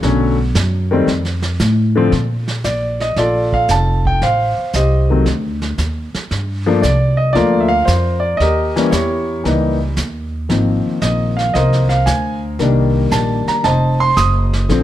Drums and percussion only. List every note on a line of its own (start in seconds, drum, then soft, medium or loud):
0.03 brush sweep medium
0.03 snare soft
0.55 snare medium
0.55 hi-hat pedal medium
1.08 brush sweep soft
1.08 snare soft
1.25 snare soft
1.42 snare soft
1.59 snare medium
1.59 hi-hat pedal medium
2.12 brush sweep soft
2.12 snare soft
2.48 snare soft
2.64 snare medium
2.64 hi-hat pedal soft
3.00 snare soft
3.16 brush sweep soft
3.16 snare soft
3.53 kick soft
3.68 snare medium
3.68 hi-hat pedal medium
4.05 kick soft
4.22 brush sweep medium
4.22 snare soft
4.73 snare medium
4.73 hi-hat pedal medium
5.26 brush sweep soft
5.26 snare soft
5.62 snare soft
5.78 snare medium
5.78 hi-hat pedal soft
6.14 snare soft
6.31 brush sweep soft
6.31 snare soft
6.83 snare medium
6.83 hi-hat pedal medium
7.35 brush sweep soft
7.35 snare soft
7.87 snare medium
7.87 hi-hat pedal medium
8.40 brush sweep soft
8.40 snare soft
8.76 snare medium
8.92 snare medium
8.92 hi-hat pedal medium
9.45 brush sweep soft
9.45 snare soft
9.97 snare medium
9.97 hi-hat pedal medium
10.49 brush sweep soft
10.49 snare soft
11.01 snare medium
11.01 hi-hat pedal medium
11.39 snare soft
11.55 brush sweep soft
11.55 snare soft
11.73 snare soft
11.90 snare soft
12.06 snare medium
12.06 hi-hat pedal medium
12.59 brush sweep soft
12.59 snare soft
13.11 snare medium
13.11 hi-hat pedal medium
13.48 snare soft
13.64 brush sweep soft
13.64 snare soft
14.16 snare medium
14.16 hi-hat pedal medium
14.53 snare soft
14.69 brush sweep medium
14.69 snare soft